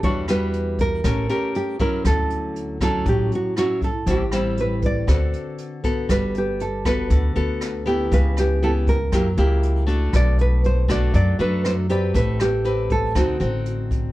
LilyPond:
<<
  \new Staff \with { instrumentName = "Nylon-string guitar" } { \time 4/4 \key d \major \tempo 4 = 119 cis''8 b'4 bes'4. g'8 bes'8 | a'4. a'8 g'8 fis'8 fis'8 a'8 | g'4 b'8 d''2 r8 | \key g \major b'8 g'8 a'8 b'2 r8 |
b'8 g'8 a'8 bes'2 r8 | d''8 b'8 c''8 d''8 d''8 b'8 c''8 d''8 | b'8 g'4 a'8 fis'4 r4 | }
  \new Staff \with { instrumentName = "Nylon-string guitar" } { \time 4/4 \key d \major << { <g d' fis'>8 <g d' fis'>4. <cis' g' bes'>8 <cis' g' bes'>4 <fis cis' e'>8~ | <fis cis' e'>4. <fis cis' e'>4. <fis cis' e'>8 r8 | <g c' e'>8 <g c' e'>4. <c' fis' a'>4. <b fis' a'>8~ | \key g \major <b fis' a'>4 r8 <b fis' a'>4 <b fis' a'>4 <b e' g'>8~ |
<b e' g'>4 <b e' g'>8 r8 <ais e' g'>8 <ais e' g'>4 <a d' fis'>8~ | <a d' fis'>4. <a d' fis'>4 <a d' fis'>4 <c' g' b'>8~ | <c' g' b'>4 <c' g' b'>4 <c' ees' fis'>8 <c' ees' fis'>4. | } \\ { e2 a2 | d2 a,2 | a,2 d2 | g2 d2 |
cis2 fis2 | b,2 fis2 | a2 d2 | } >> }
  \new Staff \with { instrumentName = "Upright bass" } { \clef bass \time 4/4 \key d \major e,2 a,,8 r4. | d,2 a,,8 r4. | a,,2 d,8 r4. | \key g \major g,,2 d,8 d,4. |
cis,2 fis,8 cis,4. | b,,2 fis,8 fis,4. | a,,2 d,8 a,,4. | }
  \new DrumStaff \with { instrumentName = "Drums" } \drummode { \time 4/4 <hh bd>8 <hh ss>8 hh8 <hh bd>8 <hh bd ss>8 hh8 hh8 <hh bd>8 | <hh bd ss>8 hh8 hh8 <hh bd ss>8 <hh bd>8 hh8 <hh ss>8 <hh bd>8 | <hh bd>8 <hh ss>8 hh8 <hh bd>8 <hh bd ss>8 hh8 hh8 <hh bd>8 | <hh bd ss>8 hh8 hh8 <hh bd ss>8 <hh bd>8 hh8 <hh ss>8 hh8 |
<hh bd>8 <hh ss>8 hh8 <hh bd>8 <hh bd ss>8 hh8 hh8 hh8 | <hh bd ss>8 hh8 hh8 <hh bd ss>8 <hh bd>8 hh8 <hh ss>8 hh8 | <hh bd>8 <hh ss>8 hh8 <hh bd>8 <hh bd ss>8 hh8 hh8 <hh bd>8 | }
>>